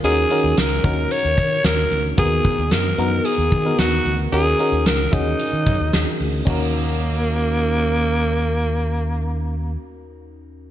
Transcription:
<<
  \new Staff \with { instrumentName = "Alto saxophone" } { \time 4/4 \key ees \minor \tempo 4 = 112 aes'4 bes'4 des''4 bes'8. r16 | aes'4 ais'4 aes'4 fis'8. r16 | aes'4 bes'8 ees'2 r8 | bes1~ |
bes1 | }
  \new Staff \with { instrumentName = "FM electric piano" } { \time 4/4 \key ees \minor <des' ees' ges' bes'>8 <des' ees' ges' bes'>4 <des' ees' ges' bes'>2 r8 | <b dis' fis' ais'>4. <b dis' fis' ais'>4~ <b dis' fis' ais'>16 <b dis' fis' ais'>4~ <b dis' fis' ais'>16 | <des' ees' ges' bes'>8 <des' ees' ges' bes'>4 <des' ees' ges' aes'>2 r8 | <des' ees' ges' bes'>1~ |
<des' ees' ges' bes'>1 | }
  \new Staff \with { instrumentName = "FM electric piano" } { \clef bass \time 4/4 \key ees \minor ees4. r2 r8 | dis4. r2 r8 | ees4. r2 r8 | ees,1~ |
ees,1 | }
  \new Staff \with { instrumentName = "Fingered electric bass" } { \clef bass \time 4/4 \key ees \minor ees,8 r16 ees,16 des,8 ees,8 r16 ees,16 ees8 ees,8 d,8 | dis,8 r16 dis,16 fis,8 fis,8 r16 dis,16 dis8 dis,8 d,8 | ees,8 r16 ees,16 des,8 ees,8 r16 ees16 ges,16 ees,16 ees,16 r16 d,8 | ees,1~ |
ees,1 | }
  \new DrumStaff \with { instrumentName = "Drums" } \drummode { \time 4/4 hh8 hh8 <hh sn tamb>8 <hh bd>8 hh8 <hh bd>8 <hh sn tamb>8 hh8 | <hh bd>8 <hh bd>8 <hh sn tamb>8 hh8 hh8 <hh bd>8 <hh sn tamb>8 hh8 | hh8 hh8 <hh sn>8 <hh bd>8 hh8 <hh bd>8 <hh sn>8 hho8 | <cymc bd>4 r4 r4 r4 |
r4 r4 r4 r4 | }
>>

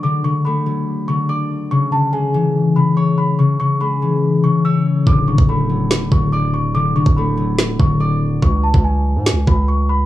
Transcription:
<<
  \new Staff \with { instrumentName = "Celesta" } { \time 4/4 \key d \lydian \tempo 4 = 143 d'''8 cis'''8 b''4. cis'''8 d'''8 r8 | cis'''8 a''8 gis''4. b''8 cis'''8 b''8 | cis'''8 cis'''8 b''4. cis'''8 e'''8 r8 | d'''8 cis'''8 b''4. cis'''8 d'''8 cis'''8 |
d'''8 cis'''8 b''4. cis'''8 d'''8 r8 | cis'''8 a''8 gis''4. b''8 cis'''8 b''8 | }
  \new Staff \with { instrumentName = "Harp" } { \clef bass \time 4/4 \key d \lydian <d d''>8 d8 a8 fis4 d8 d''4 | cis8 cis8 gis8 e4 cis8 cis''4 | cis8 cis8 gis8 e4 cis8 cis''4 | d8 d8 a8 fis4 d8 d''4 |
d8 d8 a8 fis4 d8 d''4 | r1 | }
  \new Staff \with { instrumentName = "808-style bass" } { \clef bass \time 4/4 \key d \lydian r1 | r1 | r1 | d,,8. d,,4~ d,,16 cis,,8 d,,4.~ |
d,,8. d,,4.~ d,,16 d,,4. | cis,8. cis,4 gis,16. cis,16. cis,4. | }
  \new DrumStaff \with { instrumentName = "Drums" } \drummode { \time 4/4 r4 r4 r4 r4 | r4 r4 r4 r4 | r4 r4 r4 r4 | bd8. bd16 r4 sn8 bd8 r4 |
r8. bd16 r4 sn8 bd8 r4 | bd8. bd16 r4 sn8 bd8 r4 | }
>>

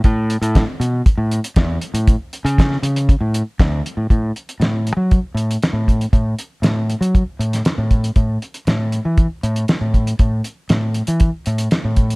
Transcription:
<<
  \new Staff \with { instrumentName = "Fingered electric bass" } { \clef bass \time 4/4 \key a \major \tempo 4 = 118 a,8. a,8 r16 b,8 r16 a,8 r16 e,8 r16 a,16~ | a,16 r8 cis8. cis8. a,8 r16 d,8 r16 a,16 | a,8 r8 a,8. fis8 r16 a,8 r16 a,8. | a,8 r8 a,8. fis8 r16 a,8 r16 a,8. |
a,8 r8 a,8. e8 r16 a,8 r16 a,8. | a,8 r8 a,8. e8 r16 a,8 r16 a,8. | }
  \new DrumStaff \with { instrumentName = "Drums" } \drummode { \time 4/4 <hh bd>8 hh16 hh16 <hh bd sn>8 hh8 <hh bd>8 hh16 hh16 <hh bd sn>8 hh16 hh16 | <hh bd>8 hh16 hh16 <hh bd sn>16 sn16 hh16 hh16 <hh bd>8 hh8 <hh bd sn>8 hh8 | <hh bd>8 hh16 hh16 <hh sn>8 hh8 <hh bd>8 hh16 hh16 <hh sn>8 <hh bd>16 hh16 | <hh bd>8 hh8 <hh sn>8 hh16 hh16 <hh bd>8 hh16 <hh sn>16 <hh sn>8 <hh bd>16 hh16 |
<hh bd>8 hh16 hh16 <hh sn>8 hh8 <hh bd>8 hh16 hh16 <hh sn>8 <hh bd>16 hh16 | <hh bd>8 hh8 <hh sn>8 hh16 hh16 <hh bd>8 hh16 hh16 <hh sn>8 <hh bd>16 hh16 | }
>>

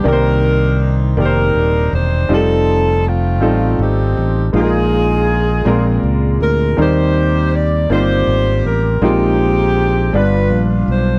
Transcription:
<<
  \new Staff \with { instrumentName = "Saxophone section" } { \time 6/8 \key ees \major \tempo 4. = 54 << { bes'4 r8 bes'4 c''8 | a'4 f'4 g'4 | aes'2 r8 bes'8 | c''4 d''8 c''4 bes'8 |
g'4. b'8 r8 c''8 | } \\ { <d' ees'>4. <d' ees'>4. | <c' ees'>4 <a c'>4 <c' ees'>4 | <ees' f'>2 r4 | g'4. g'4. |
<c' ees'>4. <d' f'>4. | } >> }
  \new Staff \with { instrumentName = "Grand piano" } { \time 6/8 \key ees \major <ees bes g' bes' c'' d''>4 r8 <ees bes g' bes' c'' d''>4 r8 | <g c' ees' f' g' a'>4 r8 <g c' ees' f' a'>4 r8 | <aes bes ees' f' aes' bes'>4 r8 <aes c' f' bes' d''>4 r8 | <g bes c' ees' bes'>4 r8 <g bes c' ees' f'>4 r8 |
<aes c' ees' f' bes'>4 r8 <g b d' f' b'>4 r8 | }
  \new Staff \with { instrumentName = "Grand piano" } { \clef bass \time 6/8 \key ees \major c4. r4. | r2. | bes,4. bes,4. | ees4. r4. |
bes,4. g,4. | }
  \new Staff \with { instrumentName = "Fingered electric bass" } { \clef bass \time 6/8 \key ees \major c,4. f,,8 ees,,8 fes,,8 | f,,4. a,,8 aes,,8 a,,8 | bes,,4. bes,,8 des,8 d,8 | ees,4. g,,8 aes,,8 a,,8 |
bes,,4. g,,8 bes,,8 b,,8 | }
>>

